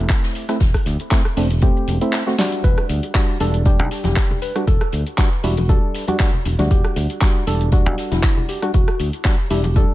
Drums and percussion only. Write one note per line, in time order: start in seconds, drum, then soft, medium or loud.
0.09 kick loud
0.09 snare soft
0.09 clap loud
0.09 closed hi-hat medium
0.09 shaker soft
0.23 snare loud
0.23 closed hi-hat medium
0.23 shaker soft
0.35 closed hi-hat soft
0.35 open hi-hat loud
0.35 shaker medium
0.48 cross-stick medium
0.48 snare soft
0.48 closed hi-hat medium
0.48 shaker soft
0.60 kick loud
0.60 snare loud
0.60 closed hi-hat medium
0.60 shaker soft
0.74 kick medium
0.74 cross-stick medium
0.74 closed hi-hat soft
0.74 open hi-hat medium
0.74 shaker soft
0.86 snare soft
0.86 closed hi-hat medium
0.86 open hi-hat loud
0.86 shaker medium
1.00 closed hi-hat medium
1.00 shaker soft
1.11 kick loud
1.11 snare loud
1.11 clap loud
1.11 closed hi-hat medium
1.11 shaker soft
1.25 cross-stick medium
1.25 closed hi-hat soft
1.25 shaker soft
1.37 open hi-hat medium
1.37 open hi-hat loud
1.37 shaker medium
1.51 closed hi-hat medium
1.51 shaker soft
1.61 kick loud
1.61 closed hi-hat medium
1.61 shaker soft
1.77 shaker soft
1.87 closed hi-hat medium
1.87 open hi-hat loud
1.87 shaker medium
2.01 closed hi-hat medium
2.01 shaker soft
2.13 snare soft
2.13 clap loud
2.13 closed hi-hat medium
2.13 shaker soft
2.27 snare medium
2.27 shaker soft
2.38 snare medium
2.38 snare loud
2.38 closed hi-hat medium
2.38 open hi-hat loud
2.38 shaker medium
2.52 closed hi-hat medium
2.52 shaker soft
2.64 kick loud
2.64 closed hi-hat medium
2.64 shaker soft
2.78 cross-stick medium
2.78 shaker soft
2.89 closed hi-hat medium
2.89 open hi-hat loud
2.89 shaker medium
3.03 closed hi-hat medium
3.03 high bongo medium
3.03 shaker soft
3.14 kick loud
3.14 snare loud
3.14 clap loud
3.14 closed hi-hat medium
3.14 shaker soft
3.28 closed hi-hat soft
3.28 shaker soft
3.40 snare soft
3.40 closed hi-hat medium
3.40 open hi-hat loud
3.40 high bongo medium
3.40 shaker medium
3.54 closed hi-hat medium
3.54 shaker soft
3.65 kick loud
3.65 closed hi-hat loud
3.65 closed hi-hat medium
3.65 shaker soft
3.91 snare medium
3.91 closed hi-hat medium
3.91 open hi-hat loud
3.91 high bongo medium
3.91 shaker medium
4.04 snare medium
4.04 closed hi-hat medium
4.04 high conga loud
4.04 shaker soft
4.16 kick loud
4.16 snare loud
4.16 clap loud
4.16 closed hi-hat medium
4.16 shaker soft
4.31 high bongo medium
4.31 low conga medium
4.31 shaker soft
4.42 closed hi-hat medium
4.42 open hi-hat loud
4.42 shaker medium
4.56 cross-stick medium
4.56 closed hi-hat medium
4.56 shaker soft
4.67 kick loud
4.67 closed hi-hat medium
4.67 shaker soft
4.81 cross-stick medium
4.81 high bongo medium
4.81 shaker soft
4.92 closed hi-hat medium
4.92 open hi-hat loud
4.92 shaker medium
5.07 closed hi-hat medium
5.07 shaker soft
5.18 kick loud
5.18 snare loud
5.18 clap loud
5.18 closed hi-hat medium
5.18 high bongo medium
5.18 shaker soft
5.32 closed hi-hat soft
5.32 shaker soft
5.43 open hi-hat medium
5.43 open hi-hat loud
5.43 shaker medium
5.57 closed hi-hat medium
5.57 high conga medium
5.57 shaker soft
5.69 kick loud
5.69 closed hi-hat medium
5.69 high bongo medium
5.69 shaker soft
5.95 snare soft
5.95 closed hi-hat medium
5.95 open hi-hat loud
5.95 shaker medium
6.08 closed hi-hat medium
6.08 high bongo medium
6.08 high conga medium
6.08 shaker soft
6.20 kick loud
6.20 snare loud
6.20 clap loud
6.20 closed hi-hat medium
6.20 shaker soft
6.34 low conga medium
6.34 shaker soft
6.45 closed hi-hat medium
6.45 open hi-hat loud
6.45 high conga medium
6.45 shaker medium
6.59 snare soft
6.59 closed hi-hat medium
6.59 high bongo medium
6.59 high conga loud
6.59 shaker soft
6.71 kick loud
6.71 closed hi-hat medium
6.71 shaker soft
6.84 cross-stick medium
6.84 shaker soft
6.96 closed hi-hat medium
6.96 open hi-hat loud
6.96 high bongo medium
6.96 shaker medium
7.10 closed hi-hat medium
7.10 shaker soft
7.21 kick loud
7.21 snare loud
7.21 clap loud
7.21 closed hi-hat medium
7.21 shaker soft
7.36 closed hi-hat soft
7.36 shaker soft
7.47 snare soft
7.47 closed hi-hat medium
7.47 open hi-hat loud
7.47 high bongo medium
7.47 shaker medium
7.61 closed hi-hat medium
7.61 shaker soft
7.72 kick loud
7.72 closed hi-hat medium
7.72 closed hi-hat soft
7.72 shaker soft
7.86 high bongo medium
7.98 snare soft
7.98 closed hi-hat medium
7.98 open hi-hat loud
7.98 shaker medium
8.11 snare medium
8.11 closed hi-hat medium
8.11 high conga loud
8.11 shaker soft
8.22 kick loud
8.22 snare loud
8.22 clap loud
8.22 closed hi-hat medium
8.22 shaker soft
8.37 high bongo medium
8.37 low conga medium
8.37 shaker soft
8.49 closed hi-hat medium
8.49 open hi-hat loud
8.49 shaker medium
8.62 cross-stick medium
8.62 closed hi-hat medium
8.62 shaker soft
8.74 kick loud
8.74 closed hi-hat medium
8.74 high bongo medium
8.74 shaker soft
8.88 cross-stick medium
8.88 shaker soft
9.00 closed hi-hat medium
9.00 open hi-hat loud
9.00 shaker medium
9.13 closed hi-hat medium
9.13 shaker soft
9.24 kick loud
9.24 snare loud
9.24 clap loud
9.24 closed hi-hat medium
9.24 high bongo soft
9.24 shaker soft
9.39 closed hi-hat soft
9.39 shaker soft
9.50 open hi-hat medium
9.50 open hi-hat loud
9.50 shaker medium
9.64 closed hi-hat medium
9.64 high bongo medium
9.64 high conga medium
9.64 shaker soft
9.76 kick loud
9.76 closed hi-hat medium
9.76 shaker soft